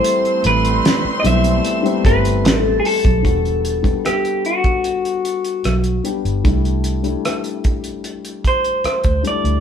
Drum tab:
HH |xxxxx-xxxxxxx-ox|xxxxxxxxxxxxxxxx|xxxxxxxxxxxxxxxx|
SD |----o-------o---|----r-------r---|----r-------r---|
BD |----------o----o|o--o---o--------|o-----o---o--o--|